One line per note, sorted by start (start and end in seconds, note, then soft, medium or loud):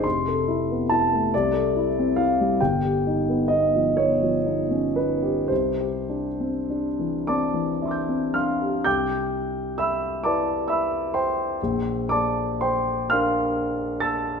0.04 1.29 F1 soft
0.04 0.90 C6 medium
0.28 0.62 A4 soft
0.48 0.82 E4 soft
0.71 1.04 B3 soft
0.89 1.24 E4 soft
0.89 1.32 A5 medium
1.13 1.33 A3 soft
1.34 2.57 C2 soft
1.34 2.17 D5 medium
1.53 1.87 A4 soft
1.76 2.09 E4 soft
1.99 2.31 C4 soft
2.16 2.51 E4 soft
2.16 2.59 F5 medium
2.40 2.61 G3 soft
2.61 5.47 G1 soft
2.61 3.49 G5 medium
2.85 3.19 G4 soft
3.07 3.41 D#4 soft
3.29 3.64 B3 soft
3.48 3.87 D#4 soft
3.48 3.95 D#5 medium
3.76 4.12 F3 soft
3.97 4.36 B3 soft
3.97 4.96 C#5 medium
4.22 4.60 F3 soft
4.45 4.85 D#4 soft
4.71 4.96 C#4 soft
4.96 5.40 D#4 soft
4.96 5.50 B4 soft
5.23 5.50 G4 soft
5.48 8.81 C2 soft
5.48 8.33 C5 soft
5.80 6.26 G4 soft
6.09 6.56 D4 soft
6.40 6.86 C4 soft
6.70 7.15 D4 soft
6.99 7.43 E3 soft
7.27 7.71 C4 soft
7.27 8.31 D5 soft
7.27 8.31 A5 soft
7.27 7.86 D6 medium
7.54 7.96 E3 soft
7.82 8.24 D4 soft
7.82 8.82 E5 soft
7.82 8.34 C6 soft
7.88 8.83 D6 soft
7.88 8.83 G6 soft
8.09 8.35 C4 soft
8.34 8.76 D4 soft
8.34 8.82 F5 soft
8.34 8.82 C6 soft
8.34 8.85 F6 soft
8.61 8.86 G4 soft
8.84 11.55 C2 soft
8.84 9.74 G5 soft
8.84 9.74 D6 soft
8.84 9.78 G6 medium
9.78 10.20 E5 soft
9.78 10.20 B5 soft
9.78 10.23 E6 medium
10.24 11.56 E4 soft
10.24 11.56 B4 soft
10.24 10.66 D5 soft
10.24 10.66 A5 soft
10.24 10.68 D6 medium
10.68 11.11 E5 soft
10.68 11.11 B5 soft
10.68 11.13 E6 medium
11.14 12.04 C5 soft
11.14 12.04 G5 soft
11.14 12.08 C6 medium
11.62 14.40 A#1 soft
12.09 12.58 D5 soft
12.09 12.58 A5 soft
12.09 12.60 D6 medium
12.61 13.07 C5 soft
12.61 13.07 G5 soft
12.61 13.10 C6 medium
13.10 14.40 D4 soft
13.10 14.40 A#4 soft
13.10 13.98 F5 soft
13.10 13.98 C6 medium
13.10 14.01 F6 medium
14.00 14.40 A5 soft
14.00 14.40 E6 soft
14.00 14.40 A6 medium